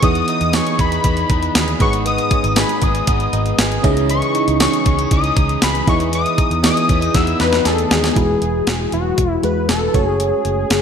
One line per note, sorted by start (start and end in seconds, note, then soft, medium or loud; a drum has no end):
0.02 0.21 E2 loud
0.02 0.79 E3 medium
0.02 0.53 E3 medium
0.02 0.41 B3 medium
0.02 0.80 B3 medium
0.02 1.04 B3 medium
0.02 0.41 D#4 medium
0.02 0.42 E4 medium
0.02 0.42 G#4 medium
0.02 0.42 D#5 medium
0.02 0.29 D#6 loud
0.02 kick loud
0.02 closed hi-hat medium
0.15 closed hi-hat medium
0.28 0.79 D#4 medium
0.28 0.57 D#6 loud
0.28 closed hi-hat medium
0.41 0.59 E2 medium
0.41 closed hi-hat medium
0.53 1.31 E3 medium
0.53 1.31 B3 medium
0.53 1.31 D#4 medium
0.53 1.55 G#4 medium
0.53 1.32 G#4 medium
0.53 1.32 D#5 medium
0.53 0.80 C#6 loud
0.53 snare loud
0.53 closed hi-hat medium
0.53 tambourine medium
0.67 closed hi-hat medium
0.79 0.97 E2 loud
0.79 1.04 B3 soft
0.79 1.30 D#4 medium
0.79 1.04 E4 soft
0.79 1.77 B5 loud
0.79 kick loud
0.79 closed hi-hat medium
0.92 closed hi-hat medium
1.04 1.23 E2 loud
1.04 1.30 E3 medium
1.04 1.80 B3 medium
1.04 1.30 B3 medium
1.04 1.28 E4 medium
1.04 kick medium
1.04 closed hi-hat loud
1.17 closed hi-hat soft
1.29 1.48 E2 loud
1.29 1.79 B3 soft
1.29 2.31 D#4 medium
1.29 1.80 E4 medium
1.29 kick medium
1.29 closed hi-hat medium
1.43 closed hi-hat soft
1.55 1.73 D#2 loud
1.55 2.56 G#4 medium
1.55 snare loud
1.55 closed hi-hat medium
1.55 tambourine medium
1.68 closed hi-hat medium
1.80 2.17 G#1 loud
1.80 2.53 G#2 medium
1.80 2.84 G#2 medium
1.80 2.84 D#3 medium
1.80 2.81 G#3 medium
1.80 2.05 B3 medium
1.80 2.41 D#4 medium
1.80 2.42 G#4 medium
1.80 2.42 B4 medium
1.80 1.93 C#6 loud
1.80 kick loud
1.80 closed hi-hat medium
1.93 closed hi-hat medium
2.06 3.07 B3 medium
2.06 2.60 D#6 loud
2.06 closed hi-hat medium
2.18 closed hi-hat medium
2.31 2.45 C#4 medium
2.31 kick medium
2.31 closed hi-hat medium
2.44 2.62 G#1 medium
2.44 2.81 D#4 medium
2.44 closed hi-hat medium
2.56 3.34 D#4 medium
2.56 3.58 G#4 medium
2.56 3.34 G#4 medium
2.56 3.35 B4 medium
2.56 2.85 B5 medium
2.56 snare loud
2.56 closed hi-hat medium
2.56 tambourine medium
2.69 closed hi-hat medium
2.82 3.01 G#1 loud
2.82 3.07 D#3 soft
2.82 3.07 G#3 medium
2.82 3.33 D#4 medium
2.82 3.85 D#6 medium
2.82 kick medium
2.82 closed hi-hat medium
2.95 closed hi-hat medium
3.07 3.26 G#1 loud
3.07 3.84 G#2 medium
3.07 3.85 D#3 medium
3.07 3.84 G#3 loud
3.07 3.89 B3 medium
3.07 kick medium
3.07 closed hi-hat loud
3.20 closed hi-hat soft
3.33 3.51 G#1 loud
3.33 4.12 D#4 medium
3.33 closed hi-hat medium
3.46 closed hi-hat soft
3.58 3.77 G#1 medium
3.58 4.60 G#4 medium
3.58 snare loud
3.58 closed hi-hat medium
3.58 tambourine medium
3.72 closed hi-hat medium
3.82 4.21 C#2 loud
3.82 4.56 C#3 medium
3.82 4.87 C#3 medium
3.82 4.09 E3 medium
3.82 4.87 G#3 medium
3.82 4.84 C#4 medium
3.82 4.45 C#4 medium
3.82 4.45 D#4 medium
3.82 4.45 E4 medium
3.82 4.45 G#4 medium
3.82 4.45 D#5 loud
3.82 kick loud
3.82 closed hi-hat medium
3.97 closed hi-hat medium
4.09 5.87 E3 medium
4.09 4.57 C#6 loud
4.09 closed hi-hat medium
4.22 closed hi-hat medium
4.35 4.85 D#4 medium
4.35 closed hi-hat medium
4.48 4.66 C#2 medium
4.48 closed hi-hat medium
4.60 5.38 E3 medium
4.60 5.37 C#4 medium
4.60 5.38 D#4 medium
4.60 5.61 G#4 medium
4.60 5.38 G#4 medium
4.60 5.38 D#5 medium
4.60 5.08 C#6 medium
4.60 snare loud
4.60 closed hi-hat medium
4.60 tambourine medium
4.73 closed hi-hat medium
4.85 5.04 C#2 medium
4.85 5.10 G#3 soft
4.85 5.11 C#4 medium
4.85 4.99 C#4 medium
4.85 kick loud
4.85 closed hi-hat medium
4.99 5.35 D#4 medium
4.99 closed hi-hat medium
5.11 5.30 C#2 loud
5.11 5.87 C#3 medium
5.11 7.14 G#3 medium
5.11 5.87 G#3 medium
5.11 5.88 C#4 loud
5.11 5.59 D#6 loud
5.11 kick loud
5.11 closed hi-hat loud
5.24 closed hi-hat soft
5.36 5.55 C#2 loud
5.36 6.15 D#4 medium
5.36 kick loud
5.36 closed hi-hat medium
5.49 closed hi-hat medium
5.62 5.81 C#2 medium
5.62 6.62 G#4 medium
5.62 5.86 B5 medium
5.62 snare loud
5.62 closed hi-hat medium
5.62 tambourine medium
5.75 closed hi-hat medium
5.87 6.24 E2 loud
5.87 6.12 E3 medium
5.87 6.60 E3 medium
5.87 7.14 E3 medium
5.87 6.48 B3 medium
5.87 6.90 B3 medium
5.87 6.48 D#4 medium
5.87 6.48 E4 medium
5.87 6.49 G#4 medium
5.87 6.49 D#5 medium
5.87 6.00 C#6 medium
5.87 kick loud
5.87 closed hi-hat medium
6.00 closed hi-hat medium
6.12 8.16 E3 medium
6.12 6.61 D#6 loud
6.12 closed hi-hat medium
6.26 closed hi-hat medium
6.38 6.88 D#4 medium
6.38 kick loud
6.38 closed hi-hat medium
6.51 6.69 E2 medium
6.51 closed hi-hat medium
6.63 7.41 E3 medium
6.63 7.41 B3 medium
6.63 7.41 D#4 medium
6.63 7.64 G#4 medium
6.63 7.41 G#4 medium
6.63 7.41 D#5 medium
6.63 7.17 D#6 loud
6.63 snare loud
6.63 closed hi-hat medium
6.63 tambourine medium
6.77 closed hi-hat medium
6.89 7.08 E2 loud
6.89 7.14 B3 soft
6.89 7.01 C#4 medium
6.89 7.14 E4 soft
6.89 kick loud
6.89 closed hi-hat medium
7.01 7.38 D#4 medium
7.01 closed hi-hat medium
7.14 7.33 E2 loud
7.14 7.40 E3 medium
7.14 8.21 B3 medium
7.14 7.40 B3 medium
7.14 7.38 E4 loud
7.14 7.40 E6 loud
7.14 kick loud
7.14 snare medium
7.14 closed hi-hat loud
7.27 closed hi-hat soft
7.39 7.58 E2 medium
7.39 8.17 B3 soft
7.39 7.89 D#4 medium
7.39 8.16 E4 medium
7.39 7.68 B4 medium
7.39 snare medium
7.39 closed hi-hat medium
7.53 snare medium
7.53 closed hi-hat soft
7.65 7.84 E2 loud
7.65 8.21 G#4 medium
7.65 7.93 A4 loud
7.65 snare medium
7.65 closed hi-hat medium
7.78 closed hi-hat medium
7.91 8.09 D#2 medium
7.91 8.21 D#4 medium
7.91 8.93 G#4 loud
7.91 snare loud
7.91 closed hi-hat medium
8.04 snare loud
8.04 closed hi-hat medium
8.15 8.35 E1 medium
8.15 8.88 E3 medium
8.15 8.93 G#3 medium
8.15 8.94 E4 medium
8.15 8.94 F#4 medium
8.15 8.94 B4 medium
8.15 kick loud
8.15 closed hi-hat medium
8.42 8.60 E1 medium
8.42 closed hi-hat medium
8.67 8.85 E1 loud
8.67 snare loud
8.67 closed hi-hat medium
8.92 9.11 E1 medium
8.92 9.31 F#4 medium
8.92 closed hi-hat medium
9.18 9.36 E1 loud
9.18 kick medium
9.18 closed hi-hat loud
9.31 9.46 E4 medium
9.43 9.70 E2 medium
9.43 9.94 G#3 medium
9.43 9.94 E4 medium
9.43 9.93 F#4 medium
9.43 9.94 B4 medium
9.43 9.69 B4 medium
9.43 closed hi-hat medium
9.68 9.87 E1 medium
9.68 10.05 A4 medium
9.68 snare loud
9.68 closed hi-hat medium
9.94 10.31 F#1 loud
9.94 10.75 A3 medium
9.94 10.76 C#4 medium
9.94 10.76 F#4 medium
9.94 10.76 C#5 medium
9.94 kick loud
9.94 closed hi-hat medium
10.05 10.21 G#4 medium
10.20 10.82 G#4 loud
10.20 closed hi-hat medium
10.45 10.63 F#1 medium
10.45 closed hi-hat medium
10.70 10.82 F#1 loud
10.70 snare loud
10.70 closed hi-hat medium